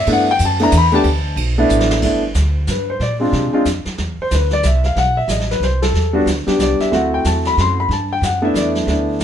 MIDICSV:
0, 0, Header, 1, 5, 480
1, 0, Start_track
1, 0, Key_signature, 1, "major"
1, 0, Tempo, 325910
1, 115, Time_signature, 3, 2, 24, 8
1, 13607, End_track
2, 0, Start_track
2, 0, Title_t, "Grand piano"
2, 0, Program_c, 0, 0
2, 112, Note_on_c, 0, 57, 72
2, 121, Note_on_c, 0, 59, 64
2, 127, Note_on_c, 0, 62, 63
2, 134, Note_on_c, 0, 64, 76
2, 187, Note_on_c, 0, 78, 98
2, 378, Note_off_c, 0, 57, 0
2, 382, Note_off_c, 0, 59, 0
2, 386, Note_off_c, 0, 62, 0
2, 389, Note_off_c, 0, 64, 0
2, 437, Note_off_c, 0, 78, 0
2, 456, Note_on_c, 0, 79, 106
2, 612, Note_off_c, 0, 79, 0
2, 666, Note_on_c, 0, 81, 96
2, 882, Note_on_c, 0, 57, 75
2, 891, Note_on_c, 0, 59, 74
2, 904, Note_on_c, 0, 62, 70
2, 907, Note_on_c, 0, 64, 80
2, 916, Note_off_c, 0, 81, 0
2, 934, Note_on_c, 0, 82, 111
2, 1051, Note_off_c, 0, 57, 0
2, 1055, Note_off_c, 0, 59, 0
2, 1061, Note_off_c, 0, 62, 0
2, 1063, Note_off_c, 0, 64, 0
2, 1090, Note_off_c, 0, 82, 0
2, 1141, Note_on_c, 0, 83, 115
2, 1354, Note_on_c, 0, 57, 79
2, 1363, Note_on_c, 0, 59, 73
2, 1371, Note_on_c, 0, 62, 74
2, 1380, Note_on_c, 0, 67, 89
2, 1393, Note_off_c, 0, 83, 0
2, 1401, Note_on_c, 0, 81, 108
2, 1526, Note_off_c, 0, 57, 0
2, 1530, Note_off_c, 0, 59, 0
2, 1534, Note_off_c, 0, 62, 0
2, 1539, Note_off_c, 0, 67, 0
2, 2002, Note_off_c, 0, 81, 0
2, 2327, Note_on_c, 0, 57, 80
2, 2329, Note_on_c, 0, 59, 74
2, 2339, Note_on_c, 0, 62, 78
2, 2343, Note_on_c, 0, 64, 86
2, 2952, Note_off_c, 0, 57, 0
2, 2954, Note_off_c, 0, 59, 0
2, 2959, Note_off_c, 0, 62, 0
2, 2961, Note_off_c, 0, 64, 0
2, 2984, Note_on_c, 0, 57, 64
2, 2997, Note_on_c, 0, 59, 55
2, 3003, Note_on_c, 0, 62, 55
2, 3008, Note_on_c, 0, 64, 67
2, 3252, Note_off_c, 0, 57, 0
2, 3258, Note_off_c, 0, 59, 0
2, 3261, Note_off_c, 0, 62, 0
2, 3264, Note_off_c, 0, 64, 0
2, 3989, Note_on_c, 0, 71, 61
2, 4256, Note_off_c, 0, 71, 0
2, 4270, Note_on_c, 0, 72, 70
2, 4436, Note_off_c, 0, 72, 0
2, 4453, Note_on_c, 0, 74, 77
2, 4623, Note_off_c, 0, 74, 0
2, 4708, Note_on_c, 0, 56, 60
2, 4719, Note_on_c, 0, 60, 53
2, 4730, Note_on_c, 0, 62, 56
2, 4735, Note_on_c, 0, 65, 64
2, 5167, Note_off_c, 0, 56, 0
2, 5172, Note_off_c, 0, 60, 0
2, 5178, Note_off_c, 0, 62, 0
2, 5181, Note_off_c, 0, 65, 0
2, 5198, Note_on_c, 0, 56, 63
2, 5207, Note_on_c, 0, 60, 58
2, 5209, Note_on_c, 0, 62, 60
2, 5220, Note_on_c, 0, 65, 74
2, 5367, Note_off_c, 0, 56, 0
2, 5372, Note_off_c, 0, 60, 0
2, 5373, Note_off_c, 0, 62, 0
2, 5379, Note_off_c, 0, 65, 0
2, 6212, Note_on_c, 0, 72, 80
2, 6369, Note_off_c, 0, 72, 0
2, 6396, Note_on_c, 0, 71, 72
2, 6661, Note_off_c, 0, 71, 0
2, 6676, Note_on_c, 0, 74, 90
2, 6841, Note_off_c, 0, 74, 0
2, 6874, Note_on_c, 0, 76, 67
2, 7140, Note_off_c, 0, 76, 0
2, 7151, Note_on_c, 0, 77, 82
2, 7319, Note_off_c, 0, 77, 0
2, 7334, Note_on_c, 0, 78, 95
2, 7610, Note_off_c, 0, 78, 0
2, 7618, Note_on_c, 0, 76, 83
2, 7792, Note_off_c, 0, 76, 0
2, 7821, Note_on_c, 0, 75, 67
2, 8094, Note_off_c, 0, 75, 0
2, 8115, Note_on_c, 0, 71, 78
2, 8282, Note_off_c, 0, 71, 0
2, 8299, Note_on_c, 0, 72, 69
2, 8573, Note_off_c, 0, 72, 0
2, 8575, Note_on_c, 0, 69, 77
2, 9031, Note_on_c, 0, 55, 73
2, 9043, Note_on_c, 0, 59, 69
2, 9050, Note_on_c, 0, 62, 68
2, 9058, Note_on_c, 0, 66, 78
2, 9191, Note_off_c, 0, 69, 0
2, 9207, Note_off_c, 0, 55, 0
2, 9213, Note_off_c, 0, 59, 0
2, 9216, Note_off_c, 0, 62, 0
2, 9220, Note_off_c, 0, 66, 0
2, 9523, Note_on_c, 0, 55, 60
2, 9530, Note_on_c, 0, 59, 53
2, 9535, Note_on_c, 0, 62, 54
2, 9540, Note_on_c, 0, 67, 67
2, 9748, Note_on_c, 0, 74, 70
2, 10019, Note_off_c, 0, 74, 0
2, 10024, Note_on_c, 0, 76, 78
2, 10155, Note_off_c, 0, 55, 0
2, 10159, Note_off_c, 0, 59, 0
2, 10161, Note_off_c, 0, 62, 0
2, 10164, Note_off_c, 0, 67, 0
2, 10187, Note_on_c, 0, 57, 61
2, 10191, Note_on_c, 0, 60, 57
2, 10197, Note_off_c, 0, 76, 0
2, 10207, Note_on_c, 0, 64, 60
2, 10212, Note_on_c, 0, 66, 69
2, 10228, Note_on_c, 0, 78, 72
2, 10499, Note_off_c, 0, 78, 0
2, 10518, Note_on_c, 0, 79, 77
2, 10684, Note_off_c, 0, 79, 0
2, 10697, Note_on_c, 0, 81, 76
2, 10974, Note_off_c, 0, 81, 0
2, 11001, Note_on_c, 0, 83, 100
2, 11166, Note_off_c, 0, 83, 0
2, 11203, Note_on_c, 0, 84, 88
2, 11468, Note_off_c, 0, 84, 0
2, 11488, Note_on_c, 0, 83, 84
2, 11522, Note_off_c, 0, 57, 0
2, 11524, Note_off_c, 0, 60, 0
2, 11532, Note_off_c, 0, 64, 0
2, 11534, Note_off_c, 0, 66, 0
2, 11650, Note_off_c, 0, 83, 0
2, 11671, Note_on_c, 0, 81, 73
2, 11942, Note_off_c, 0, 81, 0
2, 11967, Note_on_c, 0, 79, 88
2, 12130, Note_off_c, 0, 79, 0
2, 12146, Note_on_c, 0, 78, 74
2, 12398, Note_on_c, 0, 57, 73
2, 12405, Note_on_c, 0, 59, 65
2, 12407, Note_on_c, 0, 62, 63
2, 12418, Note_on_c, 0, 64, 78
2, 12419, Note_off_c, 0, 78, 0
2, 12443, Note_on_c, 0, 76, 76
2, 12608, Note_off_c, 0, 76, 0
2, 12626, Note_on_c, 0, 74, 69
2, 12795, Note_off_c, 0, 74, 0
2, 13033, Note_off_c, 0, 57, 0
2, 13037, Note_off_c, 0, 59, 0
2, 13038, Note_off_c, 0, 62, 0
2, 13043, Note_off_c, 0, 64, 0
2, 13080, Note_on_c, 0, 57, 55
2, 13086, Note_on_c, 0, 59, 50
2, 13095, Note_on_c, 0, 62, 50
2, 13102, Note_on_c, 0, 64, 57
2, 13607, Note_off_c, 0, 57, 0
2, 13607, Note_off_c, 0, 59, 0
2, 13607, Note_off_c, 0, 62, 0
2, 13607, Note_off_c, 0, 64, 0
2, 13607, End_track
3, 0, Start_track
3, 0, Title_t, "Upright bass"
3, 0, Program_c, 1, 32
3, 100, Note_on_c, 1, 43, 99
3, 571, Note_off_c, 1, 43, 0
3, 582, Note_on_c, 1, 42, 100
3, 1052, Note_off_c, 1, 42, 0
3, 1062, Note_on_c, 1, 40, 106
3, 1524, Note_off_c, 1, 40, 0
3, 1533, Note_on_c, 1, 38, 98
3, 1999, Note_off_c, 1, 38, 0
3, 2007, Note_on_c, 1, 35, 97
3, 2483, Note_off_c, 1, 35, 0
3, 2492, Note_on_c, 1, 33, 101
3, 2965, Note_off_c, 1, 33, 0
3, 2976, Note_on_c, 1, 31, 83
3, 3447, Note_off_c, 1, 31, 0
3, 3455, Note_on_c, 1, 38, 86
3, 3927, Note_off_c, 1, 38, 0
3, 3941, Note_on_c, 1, 43, 84
3, 4406, Note_off_c, 1, 43, 0
3, 4415, Note_on_c, 1, 46, 86
3, 4887, Note_off_c, 1, 46, 0
3, 4898, Note_on_c, 1, 48, 87
3, 5178, Note_off_c, 1, 48, 0
3, 5381, Note_on_c, 1, 41, 89
3, 5660, Note_off_c, 1, 41, 0
3, 5867, Note_on_c, 1, 40, 89
3, 6144, Note_off_c, 1, 40, 0
3, 6350, Note_on_c, 1, 38, 87
3, 6817, Note_off_c, 1, 38, 0
3, 6832, Note_on_c, 1, 36, 92
3, 7292, Note_off_c, 1, 36, 0
3, 7301, Note_on_c, 1, 35, 82
3, 7766, Note_off_c, 1, 35, 0
3, 7775, Note_on_c, 1, 33, 89
3, 8240, Note_off_c, 1, 33, 0
3, 8248, Note_on_c, 1, 36, 84
3, 8723, Note_off_c, 1, 36, 0
3, 8732, Note_on_c, 1, 40, 83
3, 9209, Note_off_c, 1, 40, 0
3, 9218, Note_on_c, 1, 38, 88
3, 9501, Note_off_c, 1, 38, 0
3, 9706, Note_on_c, 1, 36, 87
3, 9985, Note_off_c, 1, 36, 0
3, 10194, Note_on_c, 1, 38, 85
3, 10661, Note_off_c, 1, 38, 0
3, 10673, Note_on_c, 1, 40, 88
3, 11141, Note_off_c, 1, 40, 0
3, 11155, Note_on_c, 1, 42, 92
3, 11609, Note_off_c, 1, 42, 0
3, 11618, Note_on_c, 1, 43, 90
3, 12089, Note_off_c, 1, 43, 0
3, 12098, Note_on_c, 1, 42, 87
3, 12573, Note_off_c, 1, 42, 0
3, 12582, Note_on_c, 1, 40, 85
3, 13055, Note_off_c, 1, 40, 0
3, 13063, Note_on_c, 1, 38, 87
3, 13535, Note_off_c, 1, 38, 0
3, 13548, Note_on_c, 1, 36, 87
3, 13607, Note_off_c, 1, 36, 0
3, 13607, End_track
4, 0, Start_track
4, 0, Title_t, "Muted upright bass strokes"
4, 5198, Note_on_c, 9, 29, 38
4, 5346, Note_off_c, 9, 29, 0
4, 5680, Note_on_c, 9, 29, 37
4, 5827, Note_off_c, 9, 29, 0
4, 6166, Note_on_c, 9, 29, 37
4, 6313, Note_off_c, 9, 29, 0
4, 9528, Note_on_c, 9, 29, 38
4, 9675, Note_off_c, 9, 29, 0
4, 10013, Note_on_c, 9, 29, 36
4, 10160, Note_off_c, 9, 29, 0
4, 13607, End_track
5, 0, Start_track
5, 0, Title_t, "Drums"
5, 95, Note_on_c, 9, 51, 76
5, 243, Note_off_c, 9, 51, 0
5, 572, Note_on_c, 9, 44, 64
5, 572, Note_on_c, 9, 51, 78
5, 719, Note_off_c, 9, 44, 0
5, 719, Note_off_c, 9, 51, 0
5, 872, Note_on_c, 9, 51, 55
5, 1019, Note_off_c, 9, 51, 0
5, 1055, Note_on_c, 9, 44, 63
5, 1055, Note_on_c, 9, 51, 82
5, 1202, Note_off_c, 9, 44, 0
5, 1202, Note_off_c, 9, 51, 0
5, 1344, Note_on_c, 9, 51, 53
5, 1491, Note_off_c, 9, 51, 0
5, 1528, Note_on_c, 9, 51, 72
5, 1676, Note_off_c, 9, 51, 0
5, 2016, Note_on_c, 9, 51, 72
5, 2163, Note_off_c, 9, 51, 0
5, 2497, Note_on_c, 9, 44, 68
5, 2644, Note_off_c, 9, 44, 0
5, 2656, Note_on_c, 9, 38, 70
5, 2803, Note_off_c, 9, 38, 0
5, 2808, Note_on_c, 9, 38, 97
5, 2956, Note_off_c, 9, 38, 0
5, 2975, Note_on_c, 9, 25, 45
5, 2975, Note_on_c, 9, 38, 41
5, 2975, Note_on_c, 9, 49, 72
5, 2981, Note_on_c, 9, 36, 69
5, 3122, Note_off_c, 9, 38, 0
5, 3122, Note_off_c, 9, 49, 0
5, 3129, Note_off_c, 9, 36, 0
5, 3452, Note_on_c, 9, 44, 47
5, 3459, Note_on_c, 9, 38, 60
5, 3599, Note_off_c, 9, 44, 0
5, 3607, Note_off_c, 9, 38, 0
5, 3932, Note_on_c, 9, 44, 56
5, 3940, Note_on_c, 9, 38, 59
5, 4080, Note_off_c, 9, 44, 0
5, 4087, Note_off_c, 9, 38, 0
5, 4423, Note_off_c, 9, 25, 0
5, 4423, Note_on_c, 9, 25, 49
5, 4423, Note_on_c, 9, 38, 41
5, 4571, Note_off_c, 9, 38, 0
5, 4902, Note_on_c, 9, 38, 40
5, 5049, Note_off_c, 9, 38, 0
5, 5375, Note_on_c, 9, 44, 56
5, 5382, Note_on_c, 9, 38, 57
5, 5522, Note_off_c, 9, 44, 0
5, 5530, Note_off_c, 9, 38, 0
5, 5675, Note_on_c, 9, 38, 38
5, 5822, Note_off_c, 9, 38, 0
5, 5860, Note_off_c, 9, 25, 0
5, 5860, Note_on_c, 9, 25, 48
5, 5860, Note_on_c, 9, 38, 45
5, 6007, Note_off_c, 9, 38, 0
5, 6342, Note_on_c, 9, 44, 54
5, 6350, Note_on_c, 9, 38, 62
5, 6490, Note_off_c, 9, 44, 0
5, 6497, Note_off_c, 9, 38, 0
5, 6636, Note_on_c, 9, 38, 38
5, 6783, Note_off_c, 9, 38, 0
5, 6817, Note_on_c, 9, 44, 61
5, 6825, Note_on_c, 9, 38, 58
5, 6965, Note_off_c, 9, 44, 0
5, 6972, Note_off_c, 9, 38, 0
5, 7124, Note_on_c, 9, 38, 39
5, 7271, Note_off_c, 9, 38, 0
5, 7309, Note_off_c, 9, 25, 0
5, 7309, Note_on_c, 9, 25, 45
5, 7309, Note_on_c, 9, 38, 44
5, 7456, Note_off_c, 9, 38, 0
5, 7781, Note_on_c, 9, 44, 58
5, 7789, Note_on_c, 9, 38, 59
5, 7929, Note_off_c, 9, 44, 0
5, 7936, Note_off_c, 9, 38, 0
5, 7955, Note_on_c, 9, 38, 27
5, 8102, Note_off_c, 9, 38, 0
5, 8114, Note_on_c, 9, 38, 43
5, 8261, Note_off_c, 9, 38, 0
5, 8279, Note_on_c, 9, 38, 41
5, 8426, Note_off_c, 9, 38, 0
5, 8576, Note_on_c, 9, 38, 58
5, 8724, Note_off_c, 9, 38, 0
5, 8760, Note_off_c, 9, 25, 0
5, 8760, Note_on_c, 9, 25, 41
5, 8760, Note_on_c, 9, 38, 43
5, 8907, Note_off_c, 9, 38, 0
5, 9231, Note_on_c, 9, 44, 47
5, 9238, Note_on_c, 9, 38, 59
5, 9378, Note_off_c, 9, 44, 0
5, 9386, Note_off_c, 9, 38, 0
5, 9533, Note_on_c, 9, 38, 37
5, 9680, Note_off_c, 9, 38, 0
5, 9708, Note_on_c, 9, 44, 54
5, 9715, Note_on_c, 9, 38, 61
5, 9855, Note_off_c, 9, 44, 0
5, 9862, Note_off_c, 9, 38, 0
5, 10017, Note_on_c, 9, 38, 38
5, 10164, Note_off_c, 9, 38, 0
5, 10200, Note_off_c, 9, 25, 0
5, 10200, Note_on_c, 9, 25, 48
5, 10200, Note_on_c, 9, 38, 43
5, 10347, Note_off_c, 9, 38, 0
5, 10670, Note_on_c, 9, 44, 51
5, 10678, Note_on_c, 9, 38, 61
5, 10818, Note_off_c, 9, 44, 0
5, 10825, Note_off_c, 9, 38, 0
5, 10971, Note_on_c, 9, 38, 38
5, 11118, Note_off_c, 9, 38, 0
5, 11162, Note_on_c, 9, 38, 43
5, 11309, Note_off_c, 9, 38, 0
5, 11644, Note_off_c, 9, 25, 0
5, 11644, Note_on_c, 9, 25, 44
5, 11644, Note_on_c, 9, 38, 44
5, 11792, Note_off_c, 9, 38, 0
5, 12117, Note_on_c, 9, 44, 63
5, 12124, Note_on_c, 9, 38, 63
5, 12264, Note_off_c, 9, 44, 0
5, 12271, Note_off_c, 9, 38, 0
5, 12587, Note_on_c, 9, 44, 55
5, 12594, Note_on_c, 9, 38, 59
5, 12734, Note_off_c, 9, 44, 0
5, 12741, Note_off_c, 9, 38, 0
5, 12888, Note_on_c, 9, 38, 37
5, 13036, Note_off_c, 9, 38, 0
5, 13071, Note_off_c, 9, 25, 0
5, 13071, Note_on_c, 9, 25, 53
5, 13071, Note_on_c, 9, 38, 44
5, 13219, Note_off_c, 9, 38, 0
5, 13549, Note_on_c, 9, 44, 51
5, 13556, Note_on_c, 9, 38, 59
5, 13607, Note_off_c, 9, 25, 0
5, 13607, Note_off_c, 9, 38, 0
5, 13607, Note_off_c, 9, 44, 0
5, 13607, End_track
0, 0, End_of_file